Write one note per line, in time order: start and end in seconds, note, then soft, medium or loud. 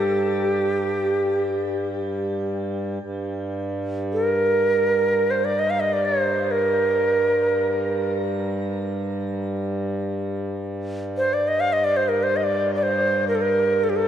0.00 2.99 G2 medium
0.00 1.87 G4 medium
3.00 14.08 G2 medium
4.13 5.32 A#4 medium
5.30 5.46 C5 medium
5.45 5.61 D5 medium
5.59 5.71 D#5 medium
5.70 5.81 F5 medium
5.80 5.95 D#5 medium
5.93 6.07 D5 medium
6.05 6.53 C5 medium
6.51 8.15 A#4 medium
11.17 11.35 C5 medium
11.33 11.49 D5 medium
11.48 11.62 D#5 medium
11.60 11.74 F5 medium
11.73 11.86 D#5 medium
11.84 11.98 D5 medium
11.97 12.10 C5 medium
12.08 12.24 A#4 medium
12.23 12.38 C5 medium
12.36 12.45 D#5 medium
12.44 12.74 D5 medium
12.75 12.84 D5 medium
12.83 13.27 C5 medium
13.28 13.37 A#4 medium
13.35 13.43 A4 medium
13.41 13.85 A#4 medium
13.84 13.91 A4 medium
13.90 13.98 G4 medium
13.96 14.08 A4 medium